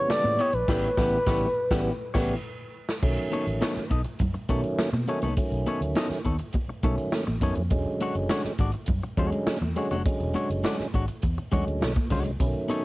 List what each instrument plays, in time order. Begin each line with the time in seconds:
Already playing: tonewheel organ C#3 E3 G3 B3
0.08 analog synth lead D5, muted clean electric guitar stroke, snare, high conga
0.24 fingered electric bass A2, muted clean electric guitar stroke, high conga
0.39 clean electric guitar B3 E4 G4 D#5, analog synth lead C#5, closed hi-hat
0.53 fingered electric bass A#1, analog synth lead B4, closed hi-hat
0.68 fingered electric bass A1, tonewheel organ C#3 E3 G3 B3, clean electric guitar B3 E4 G4, kick, snare, crash
0.97 fingered electric bass A1, tonewheel organ C#3 E3 G3 B3, clean electric guitar B3 E4 G4, kick, snare
1.26 fingered electric bass A1, tonewheel organ C#3 E3 G3 B3, clean electric guitar B3 E4 G4 C#5, kick, snare
1.71 fingered electric bass A1, tonewheel organ C#3 E3 G3 B3, clean electric guitar B3 E4 G4, kick, snare
2.14 fingered electric bass A1, tonewheel organ C#3 E3 G3 B3, clean electric guitar B3 E4 G4 C#5, kick, snare, crash
2.89 snare
3.02 fingered electric bass B1, tonewheel organ D3 F#3 A3 C#4, kick, crash, muted conga
3.09 tonewheel organ D#3
3.18 closed hi-hat
3.32 clean electric guitar B3 D#4 A4 C#5, closed hi-hat, muted conga
3.47 fingered electric bass A1, closed hi-hat
3.61 clean electric guitar B3 D#4 A4 C#5, snare, high conga
3.76 muted clean electric guitar stroke, muted fingered electric bass stroke, snare, closed hi-hat
3.90 fingered electric bass B1, clean electric guitar B3 D#4 A4 D#5, kick, closed hi-hat, muted conga
4.04 muted clean electric guitar stroke, closed hi-hat
4.19 fingered electric bass F#2, kick, closed hi-hat, muted conga, low conga
4.34 muted clean electric guitar stroke, closed hi-hat
4.49 fingered electric bass B2, tonewheel organ D#3 F#3 A3 C#4, clean electric guitar B3 D#4 A4 C#5, kick, closed hi-hat
4.64 closed hi-hat
4.79 muted clean electric guitar stroke, snare, high conga
4.93 fingered electric bass B2, muted clean electric guitar stroke, closed hi-hat, high conga
5.08 tonewheel organ D#3 F#3 A3 C#4, clean electric guitar B3 D#4 A4 C#5, closed hi-hat
5.22 fingered electric bass C2, clean electric guitar B3 D#4 A4 C#5, closed hi-hat, high conga
5.37 tonewheel organ D3 F#3 A3 C#4, kick, closed hi-hat, muted conga
5.44 tonewheel organ D#3
5.52 fingered electric bass B1, closed hi-hat
5.67 clean electric guitar B3 D#4 A4 C#5, closed hi-hat, muted conga
5.81 fingered electric bass D2, closed hi-hat
5.96 clean electric guitar B3 D#4 A4 D#5, snare, high conga
6.10 muted fingered electric bass stroke, muted clean electric guitar stroke, snare, closed hi-hat
6.25 fingered electric bass D#2, clean electric guitar B3 D#4 A4 C#5, kick, closed hi-hat, muted conga
6.39 muted clean electric guitar stroke, closed hi-hat
6.53 kick, closed hi-hat, muted conga
6.68 muted fingered electric bass stroke, muted clean electric guitar stroke
6.83 fingered electric bass B1, tonewheel organ D#3 F#3 A3 C#4, clean electric guitar B3 D#4 A4 C#5, kick, closed hi-hat, low conga
6.98 muted clean electric guitar stroke, closed hi-hat
7.12 muted clean electric guitar stroke, snare, high conga
7.27 fingered electric bass A1, muted clean electric guitar stroke, closed hi-hat, high conga
7.41 fingered electric bass F#2, tonewheel organ D#3 F#3 A3 C#4, clean electric guitar B3 D#4 A4 C#5, kick, closed hi-hat
7.55 fingered electric bass F2, muted clean electric guitar stroke, closed hi-hat, high conga
7.70 fingered electric bass E1, tonewheel organ D3 F#3 G#3 C#4, kick, closed hi-hat, muted conga
8.00 clean electric guitar G#3 D4 F#4 C#5, closed hi-hat, muted conga
8.15 fingered electric bass F#1, closed hi-hat
8.29 clean electric guitar G#3 D4 F#4 C#5, snare, high conga
8.44 muted fingered electric bass stroke, snare
8.58 fingered electric bass G#1, clean electric guitar G#3 D4 F#4 D5, kick, closed hi-hat
8.72 muted clean electric guitar stroke, closed hi-hat
8.86 fingered electric bass F#2, kick, closed hi-hat, muted conga, low conga
9.02 muted clean electric guitar stroke, closed hi-hat
9.17 fingered electric bass E2, tonewheel organ D3 F#3 G#3 C#4, clean electric guitar G#3 D4 F#4 C#5, kick, closed hi-hat
9.32 muted clean electric guitar stroke, closed hi-hat
9.47 muted clean electric guitar stroke, snare, high conga
9.61 fingered electric bass E2, muted clean electric guitar stroke, high conga
9.76 tonewheel organ D3 F#3 G#3 C#4, clean electric guitar G#3 D4 F#4 C#5, closed hi-hat
9.91 fingered electric bass F1, clean electric guitar G#3 D4 F#4 C#5, closed hi-hat, high conga
10.05 tonewheel organ D3 F#3 G#3 C#4, kick, closed hi-hat, muted conga
10.20 fingered electric bass E1, closed hi-hat
10.34 clean electric guitar G#3 D4 F#4 C#5, closed hi-hat, muted conga
10.50 fingered electric bass F#1, closed hi-hat
10.63 clean electric guitar G#3 D4 F#4 D5, snare, high conga
10.79 muted clean electric guitar stroke, muted fingered electric bass stroke, snare, closed hi-hat
10.93 fingered electric bass G#1, clean electric guitar G#3 D4 F#4 C#5, kick, closed hi-hat, muted conga
11.08 muted clean electric guitar stroke, closed hi-hat
11.22 fingered electric bass E2, kick, closed hi-hat, muted conga
11.38 muted clean electric guitar stroke, closed hi-hat
11.52 fingered electric bass E2, tonewheel organ D3 F#3 G#3 C#4, clean electric guitar G#3 D4 F#4 C#5, kick, closed hi-hat, low conga
11.67 fingered electric bass D2, muted clean electric guitar stroke, closed hi-hat
11.81 fingered electric bass B1, muted clean electric guitar stroke, snare, high conga
11.96 muted clean electric guitar stroke, kick, closed hi-hat, high conga
12.10 fingered electric bass C#2, tonewheel organ D3 F#3 G#3 C#4, clean electric guitar G#3 D4 F#4 C#5, kick, open hi-hat
12.25 fingered electric bass C2, muted clean electric guitar stroke, closed hi-hat
12.40 fingered electric bass B1, tonewheel organ C#3 F#3 A3 C#4, kick, closed hi-hat, tambourine, muted conga
12.47 tonewheel organ D#3
12.69 clean electric guitar B3 D#4 A4 C#5, closed hi-hat, tambourine, muted conga